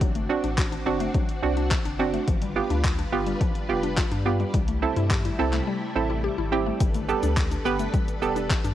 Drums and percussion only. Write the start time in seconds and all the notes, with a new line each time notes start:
0.01 kick, closed hi-hat
0.15 closed hi-hat
0.44 closed hi-hat
0.58 kick, clap, closed hi-hat
0.72 closed hi-hat
1.00 closed hi-hat
1.14 kick, closed hi-hat
1.29 closed hi-hat
1.57 closed hi-hat
1.71 kick, clap, closed hi-hat
1.85 closed hi-hat
2.14 closed hi-hat
2.28 kick, closed hi-hat
2.42 closed hi-hat
2.70 closed hi-hat
2.84 kick, clap, closed hi-hat
2.99 closed hi-hat
3.27 closed hi-hat
3.41 kick, closed hi-hat
3.55 closed hi-hat
3.83 closed hi-hat
3.98 kick, clap, closed hi-hat
4.12 closed hi-hat
4.40 closed hi-hat
4.54 kick, closed hi-hat
4.68 closed hi-hat
4.96 closed hi-hat
5.11 kick, clap, closed hi-hat
5.25 closed hi-hat
5.53 clap, closed hi-hat
6.80 kick, closed hi-hat, shaker
6.94 closed hi-hat, shaker
7.09 shaker
7.23 closed hi-hat, shaker
7.37 kick, clap, closed hi-hat, shaker
7.51 closed hi-hat, shaker
7.66 shaker
7.79 closed hi-hat, shaker
7.94 kick, closed hi-hat, shaker
8.08 closed hi-hat, shaker
8.22 shaker
8.36 closed hi-hat, shaker
8.50 kick, clap, closed hi-hat, shaker
8.65 closed hi-hat, shaker